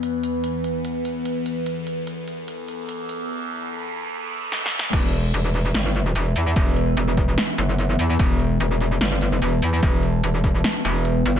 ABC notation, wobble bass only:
X:1
M:4/4
L:1/8
Q:1/4=147
K:Clyd
V:1 name="Wobble bass" clef=bass
z8 | z8 | z8 | E,,,2 E,,,2 G,,,2 E,,, E,, |
E,,,2 E,,,2 z F,,,2 E,, | E,,,2 E,,,2 G,,,2 E,,, E,, | E,,,2 E,,,2 z E,,,2 G,,, |]